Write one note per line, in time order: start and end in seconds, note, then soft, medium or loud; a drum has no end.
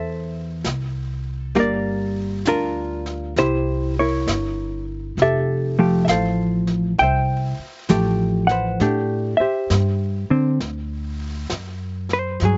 0.00 0.63 E2 medium
0.00 1.53 A4 soft
0.00 1.53 C5 soft
0.00 1.23 E5 medium
0.64 1.53 C2 medium
0.64 snare soft
0.64 hi-hat pedal soft
1.55 2.43 G1 medium
1.55 3.37 G3 soft
1.55 2.47 A#3 soft
1.55 2.47 A#4 medium
1.55 brush sweep soft
1.55 snare soft
1.60 2.44 D5 medium
2.45 3.34 D2 medium
2.45 3.33 D4 soft
2.45 3.34 F4 soft
2.45 3.34 A#4 medium
2.45 snare soft
2.45 hi-hat pedal soft
3.06 snare soft
3.36 4.24 C2 medium
3.36 3.99 E4 medium
3.36 5.15 G4 medium
3.36 3.93 C5 medium
3.36 brush sweep soft
3.36 snare soft
3.99 5.16 E4 soft
3.99 5.15 A#4 soft
3.99 4.84 C#5 medium
4.27 5.15 G1 medium
4.27 snare soft
4.27 hi-hat pedal soft
5.17 6.05 F1 medium
5.17 brush sweep soft
5.17 snare soft
5.22 5.79 G4 soft
5.22 5.80 A4 soft
5.22 6.04 E5 medium
5.79 6.93 F3 medium
5.79 6.93 A3 soft
5.79 6.11 G4 soft
6.05 6.95 A1 medium
6.05 6.09 E5 soft
6.05 snare soft
6.05 hi-hat pedal soft
6.09 7.86 A4 medium
6.09 7.01 C5 soft
6.09 6.95 F5 medium
6.67 snare soft
6.98 7.55 C2 medium
6.98 7.90 E5 medium
6.98 7.85 G5 medium
6.98 brush sweep soft
6.98 snare soft
7.03 8.50 C5 medium
7.59 muted upright bass stroke soft
7.89 8.77 A1 medium
7.89 8.79 F3 soft
7.89 8.80 A3 soft
7.89 8.51 G4 medium
7.89 snare soft
7.89 hi-hat pedal soft
8.47 9.37 F#5 medium
8.47 snare soft
8.51 8.81 B4 soft
8.51 8.82 C5 medium
8.80 9.36 A2 medium
8.80 9.34 A3 soft
8.80 9.34 D4 soft
8.80 9.34 G4 soft
8.80 brush sweep soft
8.80 snare soft
9.37 11.17 C5 soft
9.37 11.16 E5 medium
9.37 muted upright bass stroke soft
9.41 10.31 G4 soft
9.70 10.26 G2 medium
9.70 snare soft
9.70 hi-hat pedal soft
10.30 10.58 D3 soft
10.30 10.58 C4 soft
10.30 muted upright bass stroke soft
10.60 11.49 D2 medium
10.60 brush sweep soft
10.60 snare soft
11.50 12.39 F#2 medium
11.50 snare soft
11.50 hi-hat pedal soft
12.09 snare soft
12.13 12.44 C5 medium
12.40 12.57 G2 medium
12.40 12.57 F#3 soft
12.40 brush sweep soft
12.40 snare soft
12.45 12.57 G#4 soft